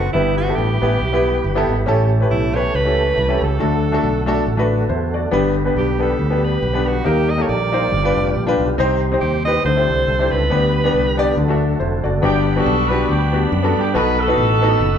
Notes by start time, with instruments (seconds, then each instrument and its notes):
Already playing: tonewheel organ D#3 B3 C4 F#4 A4, alto saxophone F#4
0.13 fingered electric bass G1, grand piano G2 B3 E4 G4 B4, tonewheel organ E3 G3 G4 B4, alto saxophone E4
0.38 alto saxophone F#4
0.48 grand piano B3 E4 G4 A4
0.56 fingered electric bass A1, alto saxophone G4
0.82 fingered electric bass A1, grand piano B3 E4 G4 B4
1.01 fingered electric bass B1
1.13 grand piano B3 E4 G4 B4
1.44 fingered electric bass G1
1.55 grand piano B3 E4 G4 A4
1.69 fingered electric bass G#1
1.86 fingered electric bass A1, grand piano A2 C#4 E4 G4 A4, tonewheel organ A3 C#4 G4 A4
2.20 grand piano C#4 E4 G4 B4
2.31 fingered electric bass B1, alto saxophone E4
2.54 grand piano C#4 E4 G4 B4, alto saxophone C#5
2.75 fingered electric bass C#2, alto saxophone B4
2.85 grand piano C#4 E4 G4 A4
3.18 fingered electric bass C2
3.28 grand piano C#4 E4 G4 A4
3.42 fingered electric bass C#2, alto saxophone A4
3.59 fingered electric bass D2, grand piano D3 A3 D4 F#4 A4, tonewheel organ D3 F#3 F#4
3.92 grand piano A3 D4 F#4 A4
4.03 fingered electric bass B1
4.26 grand piano A3 D4 F#4 A4
4.46 fingered electric bass A1
4.57 grand piano A3 D4 F#4 B4
4.89 fingered electric bass E2, grand piano E4 C5
5.14 grand piano F#4 D5
5.31 fingered electric bass G1, grand piano G2 B3 D4 G4 B4, tonewheel organ G3 B3 G4 B4
5.65 grand piano B3 D4 G4 B4
5.76 fingered electric bass B1, alto saxophone G4
5.99 grand piano B3 D4 G4 B4, alto saxophone A4
6.19 fingered electric bass D2
6.30 grand piano B3 D4 G4 B4
6.45 alto saxophone B4
6.62 fingered electric bass B1
6.73 grand piano B3 D4 G4 B4
6.87 alto saxophone F#4
7.04 fingered electric bass D#2, tonewheel organ D#3 A#3 A#4, grand piano D#3 A#3 D#4 G4 A#4, alto saxophone G4
7.30 alto saxophone D#5
7.38 grand piano A#3 D#4 G4 A4
7.42 alto saxophone C#5
7.49 fingered electric bass A#1, alto saxophone D5
7.72 grand piano A#3 D#4 G4 C5
7.92 fingered electric bass G1, grand piano G2, tonewheel organ D3 B3 F4 G4
8.04 grand piano D4 F4 G4 B4
8.17 fingered electric bass F1
8.35 fingered electric bass A#1
8.47 grand piano D4 F4 G4 B4
8.60 fingered electric bass B1
8.78 fingered electric bass C2, grand piano C3 C4 D#4 G4 C5, tonewheel organ D#3 C4 G4 C5
9.12 grand piano C4 D#4 G4 C5
9.20 fingered electric bass D#2, alto saxophone G4
9.45 grand piano C4 D#4 G4 B4, alto saxophone D#5
9.64 fingered electric bass D2, tonewheel organ D3 C4 E4 A4, grand piano D3, alto saxophone C5
9.76 grand piano D4 E4 G4 C5
9.90 fingered electric bass C2
10.08 fingered electric bass C2
10.19 grand piano D4 E4 G4 C5
10.32 fingered electric bass C#2, alto saxophone B4
10.50 fingered electric bass D2, grand piano D3 B3 D4 G4 B4, tonewheel organ B3 G4 B4
10.84 grand piano B3 D4 G4 B4
10.94 fingered electric bass C2
11.17 grand piano B3 D4 G4 D5
11.37 fingered electric bass D2, grand piano D3, tonewheel organ F#3 A3 F#4 A4
11.48 grand piano A3 D4 F#4 A4
11.80 fingered electric bass F1, grand piano E4 C5
12.04 fingered electric bass F#1, grand piano F#4 D5
12.22 fingered electric bass G1, grand piano G2 B3 D4 F#4 G4, tonewheel organ G3 D5 F#5 B5, horn section B3 D4 G4
12.55 grand piano B3 D4 F#4 G4, horn section D4 F#4 A4
12.66 fingered electric bass B1
12.88 grand piano B3 D4 F#4 G4, horn section B4
13.08 fingered electric bass D2, horn section B3 D4 G4
13.33 grand piano B3 D4 F#4 G4
13.52 fingered electric bass F#2
13.63 grand piano B3 D4 F#4 A4
13.77 fingered electric bass G2, horn section G4
13.94 fingered electric bass B1, grand piano B2 B3 D#4 F#4 A4, horn section D#4 F#4 B4, tonewheel organ A4 D#5
14.19 horn section D#4 F#4 A4
14.27 grand piano B3 D#4 F#4 B4
14.38 fingered electric bass A1
14.61 grand piano B3 D#4 F#4 A4
14.80 fingered electric bass F#1